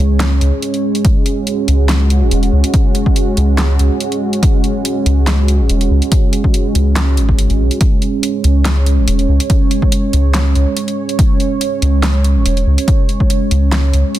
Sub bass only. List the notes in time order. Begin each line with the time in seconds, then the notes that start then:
0.00 C#2
0.41 C#2
1.68 C#2
2.22 G#1
2.31 E1
2.53 C#2
3.37 C#2
3.79 C#2
5.06 C#2
5.60 G#1
5.70 E1
5.91 C#2
6.75 C#2
7.17 G#1
7.50 G#1
7.60 B1
8.44 C#2
8.98 G#1
9.08 E1
9.29 C#2
10.13 C#2
10.55 C#2
11.82 C#2
12.36 G#1
12.46 E1
12.67 C#2
13.51 C#2
13.93 C#2